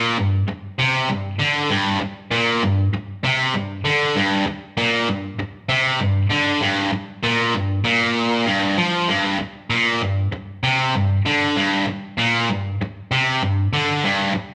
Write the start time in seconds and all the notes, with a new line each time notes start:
Already playing: A#2
0.17 G2
0.48 muted distorted electric guitar stroke
0.79 C3
1.09 G2
1.40 D3
1.71 G2
2.01 muted distorted electric guitar stroke
2.31 A#2
2.63 G2
2.94 muted distorted electric guitar stroke
3.24 C3
3.54 G2
3.85 D3
4.16 G2
4.47 muted distorted electric guitar stroke
4.77 A#2
5.08 G2
5.39 muted distorted electric guitar stroke
5.69 C3
6.00 G2
6.31 D3
6.62 G2
6.93 muted distorted electric guitar stroke
7.23 A#2
7.54 G2
7.84 A#2
8.46 G2
8.78 F3
9.08 G2
9.40 muted distorted electric guitar stroke
9.70 A#2
10.02 G2
10.33 muted distorted electric guitar stroke
10.64 C3
10.95 G2
11.26 D3
11.57 G2
11.88 muted distorted electric guitar stroke
12.19 A#2
12.50 G2
12.82 muted distorted electric guitar stroke
13.12 C3
13.42 G2
13.73 D3
14.04 G2
14.35 muted distorted electric guitar stroke